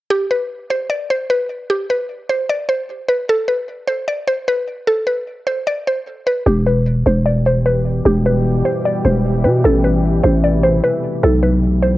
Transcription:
0.10 G4
0.31 B4
0.70 C5
0.90 D5
1.10 C5
1.30 B4
1.70 G4
1.90 B4
2.29 C5
2.49 D5
2.69 C5
3.08 B4
3.29 A4
3.48 B4
3.88 C5
4.08 D5
4.28 C5
4.48 B4
4.87 A4
5.07 B4
5.47 C5
5.67 D5
5.87 C5
6.27 B4
6.46 E1 B2 E3 G3 G4
6.66 B4
7.06 E1 C5
7.25 D5
7.46 C5
7.65 B4
8.05 E1 G4
8.26 B4
8.65 C5
8.85 D5
9.05 E1 C5
9.44 B2 B4
9.64 A1 C3 A3 E4 A4
9.84 B4
10.23 A1 C5
10.44 D5
10.63 C5
10.84 B4
11.23 B1 B2 D3 F#3 F#4 A4
11.43 B4
11.82 C5

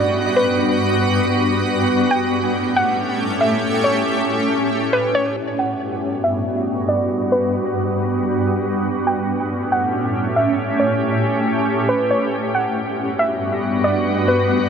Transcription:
Already playing: G2 G3 B3 F#4 D5
0.36 B4
1.89 A2 A3 C#4 G4
2.11 G5
2.76 F#5
3.41 E5
3.84 C#5
4.93 B4
5.15 C#5
5.37 G2 G3 B3 F#4
5.59 F#5
6.24 E5
6.89 D5
7.32 B4
8.85 A2 A3 C#4 G4
9.07 G5
9.72 F#5
10.36 E5
10.80 C#5
11.89 B4
12.11 C#5
12.32 G2 G3 B3 F#4
12.55 F#5
13.19 E5
13.84 D5
14.28 B4

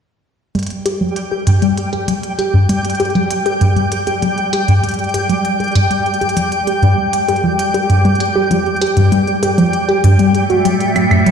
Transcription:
0.55 G3 G5, closed hi-hat
0.59 closed hi-hat
0.63 closed hi-hat
0.67 closed hi-hat
0.70 closed hi-hat
0.86 G4, closed hi-hat
1.01 F#3
1.16 closed hi-hat
1.31 G4
1.47 G2, closed hi-hat
1.62 G3, closed hi-hat
1.77 closed hi-hat
1.93 G4, closed hi-hat
2.08 F#3, closed hi-hat
2.23 closed hi-hat
2.39 G4, closed hi-hat
2.54 G2
2.69 G3, closed hi-hat
2.85 closed hi-hat
2.90 closed hi-hat
2.95 closed hi-hat
3.00 G4, closed hi-hat
3.05 closed hi-hat
3.10 closed hi-hat
3.15 F#3, closed hi-hat
3.31 closed hi-hat
3.46 G4, closed hi-hat
3.61 G2, closed hi-hat
3.76 G3, closed hi-hat
3.92 closed hi-hat
4.07 G4, closed hi-hat
4.22 F#3, closed hi-hat
4.38 closed hi-hat
4.53 G4, closed hi-hat
4.68 G2, closed hi-hat
4.83 G3, closed hi-hat
4.89 closed hi-hat
4.91 closed hi-hat
4.94 closed hi-hat
4.99 closed hi-hat
5.04 closed hi-hat
5.09 closed hi-hat
5.14 G4, closed hi-hat
5.29 F#3, closed hi-hat
5.45 closed hi-hat
5.60 G4, closed hi-hat
5.64 closed hi-hat
5.68 closed hi-hat
5.72 G2, closed hi-hat
5.75 closed hi-hat
5.79 closed hi-hat
5.83 closed hi-hat
5.87 G3, closed hi-hat
5.91 closed hi-hat
6.06 closed hi-hat
6.14 closed hi-hat
6.21 G4, closed hi-hat
6.29 closed hi-hat
6.37 F3, closed hi-hat
6.52 closed hi-hat
6.67 G4, closed hi-hat
6.82 G2, closed hi-hat
6.98 G3
7.13 closed hi-hat
7.28 G4, closed hi-hat
7.36 closed hi-hat
7.44 F3
7.59 closed hi-hat
7.74 G4, closed hi-hat
7.90 G2, closed hi-hat
8.05 G3, closed hi-hat
8.15 closed hi-hat
8.20 closed hi-hat
8.36 G4
8.51 F3, closed hi-hat
8.66 closed hi-hat
8.76 closed hi-hat
8.81 G4, closed hi-hat
8.87 closed hi-hat
8.97 G2, closed hi-hat
9.12 G3, closed hi-hat
9.27 closed hi-hat
9.43 G4, closed hi-hat
9.58 F3, closed hi-hat
9.73 closed hi-hat
9.89 G4, closed hi-hat
10.04 G2, closed hi-hat
10.19 G3, closed hi-hat
10.35 A3, closed hi-hat
10.50 F#4, closed hi-hat
10.65 F#3, closed hi-hat
10.81 closed hi-hat
10.96 F#3, closed hi-hat, claves
11.06 E4
11.11 F#2 A4, closed hi-hat, claves
11.25 F#3 C#5, closed hi-hat

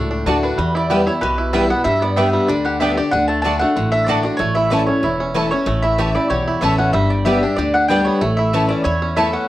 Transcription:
Already playing: C#2 A2 A3 A4
0.11 D4
0.26 D2 D3 A3 D4 F#4 D5 A5
0.43 D4 B4
0.58 E2 G3
0.75 E4 D5
0.90 E3 G3 B3 E4 G4 B4 G5
1.07 B3 E4 C#5
1.21 B1 B2 G4 B4
1.38 E4
1.53 E3 G3 B3 E4 B4 E5 G5
1.70 B3 E4 F#5
1.84 G2 G3 E5
2.02 B3 D5
2.16 G3 B3 D4 G4 D5 E5 G5
2.33 G3
2.48 D2 D3 D4 D5
2.65 G4 F#5
2.80 G3 B3 D4 G4 D5 E5 G5
2.97 D4 G4 D5
3.11 D2 D3 D4 F#5
3.28 A3 A5
3.42 D3 A3 D4 F#4 D5 A5
3.46 F#4 A5
3.59 A3 D4 F#4 F#5
3.76 A1 A2 D3
3.92 D4 E5
4.07 D3 A3 D4 F#4 D5 A5
4.23 D4 F#4 D5
4.37 A1 A2 A3 C#5
4.55 E4 E5
4.70 E3 A3 C#4 E4 C#5 D5 A5
4.87 C#4 E4 C#5
5.03 E1 E2 E4
5.20 C#4
5.35 E3 A3 C#4 E4 C#5 A5
5.51 C#4 E4 C#5
5.66 A1 A2 A3
5.82 E4 E5
5.98 E3 A3 C#4 E4 G4 C#5 A5
6.15 C#4 E4 D5
6.30 B1 E2 G4 C#5
6.48 E4
6.61 A1 E3 A3 C#4 E4 C#5 E5 A5
6.78 C#4 F#5
6.93 G1 G2 G3 E5
7.10 D5
7.25 G3 B3 D4 G4 D5 E5 G5
7.43 D4 G4
7.56 D2 D3 G4 D5
7.74 D4 F#5
7.88 G3 B3 D4 G4 D5 G5
8.05 B3 C#5
8.21 A1 A2 A3
8.37 E4 E5
8.53 E3 A3 C#4 E4 C#5 A5
8.68 C#4 D5
8.84 E2 E4 C#5
9.02 C#4
9.16 E3 A3 C#4 E4 C#5 E5 A5
9.33 C#4 F#5

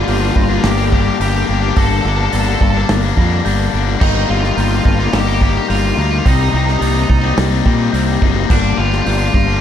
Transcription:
Already playing: G2 G3
0.04 G1 G2 D3 F4, open hi-hat
0.08 G3 A#3 D4 G6
0.12 F4
0.20 G3 A#3 D4 F4
0.28 F4
0.35 G1 D4 F4 A#6, muted distorted electric guitar stroke, kick
0.42 F4
0.49 G3 A#3 D4 F4
0.58 F4
0.63 G1 A#3 G4, snare, open hi-hat
0.70 G4
0.77 G3 A#3 D4 G4
0.85 G4
0.91 D3 G3 A#3 D4 G4, kick
1.01 G4
1.08 G4
1.19 G1 G2 D3 G3 A#3 D4 G4 G6, open hi-hat
1.29 G4
1.37 G4
1.46 G1 D3 G3 A#3 G4
1.51 D4 G4
1.61 G3 A#3 D4 G4
1.70 G4
1.75 G1 G2 D3 G3 A#3 D4 A4 A#6, kick, open hi-hat
1.85 A4
1.93 A4
2.00 D3 A4
2.05 G1 G3 A#3 D4 A4
2.16 A#3 D4 A4
2.21 G3 A4
2.32 G1 G2 D3 G3 A#3 D4 A4 A6, open hi-hat
2.39 A4
2.46 G3 A#3 D4 A4
2.54 A4
2.61 G1 D4 A4 A6, muted distorted electric guitar stroke, kick
2.70 D4 A4
2.76 G3 A#3 A4
2.89 G1 A#3, snare, open hi-hat
3.03 G3 A#3 D4
3.17 F2 D3 G3 A#3 D4 A#6, kick
3.44 G1 G2 D3 G3 A#3 D4 G6, open hi-hat
3.72 G1 D3 G3 A#3 D4
3.86 G3 A#3 D4
4.00 G1 G2 D#3 G3 A#3 D#4 G6, kick, crash
4.28 G1 D#3 G3 A#3 D#4 F4
4.37 F4
4.42 G3 A#3 D#4 F4, snare
4.53 G2 F4
4.57 G1 D#3 G3 A#3 D#4 F4 G6, open hi-hat
4.68 D#4 F4
4.73 G3 A#3 F4
4.84 G1 D#4 F4 A#6, muted distorted electric guitar stroke, kick
4.91 F4
4.98 G3 A#3 D#4 F4
5.08 F4
5.13 G1 A#3 G4, snare, open hi-hat
5.21 G4
5.26 G3 A#3 D#4 G4
5.35 G4
5.40 D#3 G3 A#3 D#4 G4, kick
5.50 G4
5.58 G4
5.68 G1 G2 D#3 G3 A#3 D#4 F4 G6, open hi-hat
5.79 F4
5.86 F4
5.95 D2 D#3 G3 A#3 F4
5.99 D#4 F4
6.10 G3 A#3 D#4 F4
6.18 F4
6.25 C2 C3 G3 C4 D#4 A#6, kick, open hi-hat
6.34 D#4
6.41 D#4
6.49 C3 D#4
6.54 C2 G3 C4 D#4
6.65 C4 D#4, snare
6.69 G3 D#4
6.80 C2 C3 G3 A#3 C4 D#4 A6, open hi-hat
6.87 D#4
6.93 G3 C4 D#4
7.03 D#4
7.08 C2 D#4 A6, muted distorted electric guitar stroke, kick
7.19 D#4
7.23 G3 C4 D#4
7.38 C2 A#3, snare, open hi-hat
7.50 G3 C4 D#4
7.64 A#2 C3 G3 C4 D#4 A#6, kick
7.92 C2 C3 G3 A#3 C4 D#4 G6, open hi-hat
8.21 F#1 C3 G3 C4 D#4, kick
8.35 G3 C4 D#4
8.49 G1 G2 D3 G3 A#3 D4 G6, kick, crash
8.77 G1 D3 G3 A#3 D4 F4
8.86 F4
8.91 G3 A#3 D4 F4, snare
9.02 G2 D3 F4
9.06 G1 G3 A#3 D4 F4 G6, open hi-hat
9.18 A#3 D4 F4
9.22 G3 F4
9.34 G1 D4 F4 A#6, muted distorted electric guitar stroke, kick
9.47 G3 A#3 D4

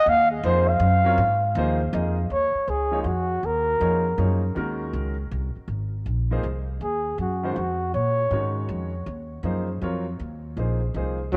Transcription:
Already playing: D#5
0.06 D#2 F5
0.31 G#4
0.43 F2 F3 A#3 D#4 G#4 C5
0.69 F5
0.80 F#2
1.04 F#3 C4 F4 A#4 C#5
1.18 G#2
1.55 D#2 F3 A#3 D#4 G#4 C5
1.92 F2 F3 A#3 D#4 G#4 D#5
2.30 D#2 C#5
2.54 muted upright bass stroke
2.68 C#2 G#4
2.91 F3 A#3 D#4 G#4 C#5
3.02 F2 F4
3.06 F#4
3.43 D#2 A#4
3.80 F2 F3 A#3 D#4 G#4 C#5
4.18 F#2 F3 A#3 D#4 G#4 C#5
4.55 D#2 D#3 G#3 C#4 F#4 A#4
4.93 C#2
5.31 C2
5.56 muted upright bass stroke
5.68 G#1
6.06 A#1
6.31 F3 A#3 D#4 G#4 C5
6.43 C2
6.81 D#2 G#4
7.18 F#2 F#4
7.43 D#3 G#3 C#4 F#4 C5
7.53 F2 F4
7.57 F#4
7.94 A#2 C#5
8.31 G#2 D#3 G#3 C#4 F#4 C#5
8.69 F2
9.06 D#2
9.43 F#2 F3 A#3 D#4 G#4 C5
9.81 F2 F#3 C4 F4 A#4 C#5
10.19 D#2
10.57 A#1 F3 A#3 D#4 G#4 C5
10.94 C2 F3 A#3 D#4 G#4 C5
11.32 D#2 C#3 F#3 C4

